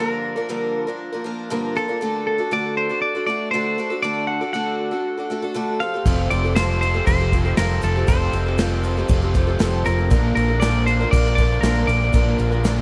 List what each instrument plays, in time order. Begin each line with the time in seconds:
Already playing: clean electric guitar A#4
0.00 twelve-string acoustic guitar G2 D3 F3 A#3 D4 A#4
0.36 twelve-string acoustic guitar F3 A#3 D4 A#4
0.49 twelve-string acoustic guitar G2 D3 F3 A#3 D4 A#4
0.87 twelve-string acoustic guitar F3 A#3 D4 A#4
1.12 twelve-string acoustic guitar F3 A#3 D4 A#4
1.24 twelve-string acoustic guitar F3 A#3 D4 A#4
1.50 twelve-string acoustic guitar G2 D3 F3 A#3 D4 A#4
1.75 twelve-string acoustic guitar F3 A#3 D4 A#4, clean electric guitar A4
1.88 twelve-string acoustic guitar F3 A#3 D4 A#4
2.01 twelve-string acoustic guitar D3 A3 D4 F#4 A4
2.27 clean electric guitar A4
2.38 twelve-string acoustic guitar D4 F#4 A4
2.51 twelve-string acoustic guitar D3 A3 D4 F#4 A4, clean electric guitar D5
2.77 clean electric guitar C5
2.89 twelve-string acoustic guitar D4 F#4 A4
3.02 clean electric guitar D5
3.15 twelve-string acoustic guitar D4 F#4 A4
3.27 twelve-string acoustic guitar A3 D4 F#4 A4, clean electric guitar D5
3.51 twelve-string acoustic guitar D3 A3 D4 F#4 A4, clean electric guitar C5
3.78 twelve-string acoustic guitar A3 D4 F#4 A4
3.90 twelve-string acoustic guitar D4 F#4 A4
4.02 twelve-string acoustic guitar D3 A3 D4 F#4 A4, clean electric guitar D5
4.27 clean electric guitar F#5
4.41 twelve-string acoustic guitar D4 F#4 A4
4.53 twelve-string acoustic guitar D3 A3 D4 F#4 A4, clean electric guitar F#5
4.91 twelve-string acoustic guitar D4 F#4 A4
5.17 twelve-string acoustic guitar D4 F#4 A4
5.30 twelve-string acoustic guitar A3 D4 F#4 A4
5.42 twelve-string acoustic guitar D4 F#4 A4
5.54 twelve-string acoustic guitar D3 A3 D4 F#4 A4
5.80 twelve-string acoustic guitar C4 A4, clean electric guitar F5
5.94 twelve-string acoustic guitar C4 G4 A4
6.06 fingered electric bass F1, overdriven electric guitar F2 C3 F3 A3 C4 F4, twelve-string acoustic guitar F3 C4 G4 A4, kick, crash, shaker
6.30 fingered electric bass F1, overdriven electric guitar F3 A3 C4 F4, clean electric guitar D5, crash, shaker
6.45 twelve-string acoustic guitar C4 G4 A4
6.55 overdriven electric guitar F3 A3 C4 F4, twelve-string acoustic guitar F3 C4 G4 A4, clean electric guitar C5, snare, crash, shaker
6.81 overdriven electric guitar F3 A3 C4 F4, clean electric guitar C5, crash, shaker
6.94 twelve-string acoustic guitar C4 G4 A4, shaker
7.06 fingered electric bass F1, overdriven electric guitar F2 C3 F3 A3 C4 F4, clean electric guitar C5, kick, crash, shaker
7.20 twelve-string acoustic guitar C4 G4 A4, shaker
7.32 twelve-string acoustic guitar F3 C4 G4 A4, overdriven electric guitar F3 A3 C4 F4, kick, crash, shaker
7.45 twelve-string acoustic guitar C4 G4 A4, shaker
7.56 fingered electric bass F1, overdriven electric guitar F3 A3 C4 F4, twelve-string acoustic guitar F3 C4 G4 A4, clean electric guitar A#4, snare, crash, shaker
7.70 shaker
7.82 fingered electric bass F1, twelve-string acoustic guitar F3 C4 G4 A4, clean electric guitar A4, crash, shaker
7.96 twelve-string acoustic guitar C4 G4 A4
8.07 fingered electric bass F1, overdriven electric guitar F2 C3 F3 A3 C4 F4, twelve-string acoustic guitar F3 C4 G4 A4, clean electric guitar C5, kick, crash, shaker
8.33 fingered electric bass F1, overdriven electric guitar F3 A3 C4 F4, crash, shaker
8.46 twelve-string acoustic guitar C4 G4 A4
8.58 overdriven electric guitar F3 A3 C4 F4, twelve-string acoustic guitar F3 C4 G4 A4, snare, crash, shaker
8.76 clean electric guitar A#4
8.83 overdriven electric guitar F3 A3 C4 F4, crash, shaker
8.96 twelve-string acoustic guitar C4 G4 A4, shaker
9.08 fingered electric bass F1, overdriven electric guitar F2 C3 F3 A3 C4 F4, kick, crash, shaker
9.21 twelve-string acoustic guitar C4 G4 A4, shaker
9.34 twelve-string acoustic guitar F3 C4 G4 A4, overdriven electric guitar F3 A3 C4 F4, kick, crash, shaker
9.47 twelve-string acoustic guitar C4 G4 A4
9.59 fingered electric bass F1, twelve-string acoustic guitar F3 C4 G4 A4, overdriven electric guitar F3 A3 C4 F4, snare, crash, shaker
9.73 shaker
9.85 fingered electric bass F1, twelve-string acoustic guitar F3 C4 G4 A4, clean electric guitar A#4, crash, shaker
9.98 twelve-string acoustic guitar C4 G4 A4
10.10 fingered electric bass A#1, twelve-string acoustic guitar A#2 D3 F3 A#3 D4 A#4, overdriven electric guitar A#2 D3 A#3 D4 F4, kick, crash, shaker
10.35 fingered electric bass A#1, overdriven electric guitar A#3 D4 F4, clean electric guitar A#4, crash, shaker
10.48 twelve-string acoustic guitar F3 A#3 D4 A#4
10.60 twelve-string acoustic guitar A#2 D3 F3 A#3 D4 A#4, overdriven electric guitar D3 A#3 D4 F4, clean electric guitar D5, snare, crash, shaker
10.86 overdriven electric guitar A#3 D4 F4, clean electric guitar C5, crash, shaker
11.00 twelve-string acoustic guitar F3 A#3 D4 A#4, shaker
11.11 fingered electric bass A#1, overdriven electric guitar A#2 D3 A#3 D4 F4, clean electric guitar D5, kick, crash, shaker
11.26 twelve-string acoustic guitar F3 A#3 D4 A#4, shaker
11.35 twelve-string acoustic guitar F3 A#3 D4, overdriven electric guitar F4, clean electric guitar D5, kick, crash, shaker
11.39 overdriven electric guitar A#3 D4, twelve-string acoustic guitar A#4
11.51 shaker
11.61 fingered electric bass A#1, twelve-string acoustic guitar A#2 D3 F3 D4, overdriven electric guitar D3 A#3 D4, clean electric guitar A#4, snare, crash, shaker
11.65 twelve-string acoustic guitar A#3 A#4, overdriven electric guitar F4
11.76 shaker
11.87 fingered electric bass A#1, twelve-string acoustic guitar F3 A#3 D4 A#4, clean electric guitar D5, crash, shaker
12.00 twelve-string acoustic guitar F3 A#3 D4 A#4
12.13 fingered electric bass A#1, overdriven electric guitar A#2 D3 A#3 D4 F4, twelve-string acoustic guitar A#2 D3 F3 A#3 D4 A#4, kick, crash, shaker
12.38 fingered electric bass A#1, overdriven electric guitar A#3 D4 F4, crash, shaker
12.51 twelve-string acoustic guitar F3 A#3 D4 A#4, shaker
12.63 twelve-string acoustic guitar A#2 D3 F3 A#3 D4 A#4, overdriven electric guitar D3 A#3 D4 F4, snare, crash, shaker
12.77 shaker